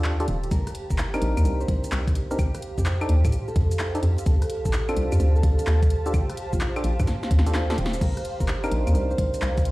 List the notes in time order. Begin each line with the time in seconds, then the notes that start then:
Already playing: D#2 D4 F4 G4 A4 C5 D5 F5 A5
0.04 clap
0.20 D4 F4 G4 A4, closed hi-hat
0.28 D#1, closed hi-hat
0.44 closed hi-hat
0.51 C2 A#4, kick, closed hi-hat, shaker
0.67 cross-stick, closed hi-hat, shaker
0.75 closed hi-hat
0.87 G1 A#4 C5 F5, kick, shaker
0.98 clap, shaker
1.14 C4 D4 D#4 A#4, closed hi-hat, claves, shaker
1.22 A#1, closed hi-hat
1.37 D#2, closed hi-hat, claves, shaker
1.45 C2, closed hi-hat, shaker
1.61 C5, shaker
1.68 C2, kick, closed hi-hat
1.84 closed hi-hat, shaker
1.92 C2, clap, shaker
2.07 kick, closed hi-hat, shaker
2.15 closed hi-hat
2.31 C4 D4 D#4 A#4, shaker
2.39 G4, kick, closed hi-hat, claves, shaker
2.55 cross-stick, closed hi-hat, shaker
2.62 closed hi-hat
2.78 F2 G4, kick, shaker
2.86 clap, shaker
3.01 D4 D#4 G4 A4, closed hi-hat, claves, shaker
3.09 D#2 A5, closed hi-hat
3.25 A2, kick, closed hi-hat, claves, shaker
3.32 closed hi-hat, shaker
3.48 A4, shaker
3.56 F2, kick, closed hi-hat
3.71 closed hi-hat, shaker
3.79 clap, shaker
3.95 D4 D#4 G4 A4, closed hi-hat, shaker
4.03 F2, closed hi-hat
4.18 closed hi-hat, shaker
4.26 D2 A4, kick, closed hi-hat, shaker
4.42 cross-stick, closed hi-hat, shaker
4.50 closed hi-hat
4.65 A1 A4, kick, shaker
4.73 clap, shaker
4.89 C4 D4 F4 A4, closed hi-hat, claves, shaker
4.97 C2, closed hi-hat
5.12 F2, closed hi-hat, claves, shaker
5.20 D2, closed hi-hat, shaker
5.35 A4, shaker
5.43 D2, kick, closed hi-hat
5.59 closed hi-hat, shaker
5.67 D#2, clap, shaker
5.83 kick, closed hi-hat, shaker
5.90 closed hi-hat
6.06 D4 F4 G4 A4, shaker
6.14 G4, kick, closed hi-hat, claves, shaker
6.29 cross-stick, closed hi-hat, shaker
6.37 closed hi-hat
6.53 A#1 F4, kick, shaker
6.61 clap, shaker
6.76 D4 F4 G4 A4, closed hi-hat, claves, shaker
6.84 A#1, closed hi-hat
7.00 G2, kick, cross-stick, closed hi-hat, claves, shaker
7.07 snare, closed hi-hat, shaker
7.23 C4, snare, shaker
7.31 D#2, kick, closed hi-hat
7.39 snare
7.46 D4 F4 G4 A4, closed hi-hat, shaker
7.54 snare, clap, shaker
7.70 D4 F4 G4 A4, snare, closed hi-hat, shaker
7.78 D#1, closed hi-hat
7.86 snare
7.93 closed hi-hat, shaker
8.01 C2 A#4, kick, closed hi-hat, crash, shaker
8.17 cross-stick, closed hi-hat, shaker
8.25 closed hi-hat
8.40 G1 A#4, kick, shaker
8.48 clap, shaker
8.64 C4 D4 D#4 A#4, closed hi-hat, claves, shaker
8.72 A#1, closed hi-hat
8.87 D#2, closed hi-hat, claves, shaker
8.95 C2, closed hi-hat, shaker
9.11 C5, shaker
9.18 C2, kick, closed hi-hat
9.34 closed hi-hat, shaker
9.42 C2, clap, shaker
9.57 kick, closed hi-hat, shaker
9.65 closed hi-hat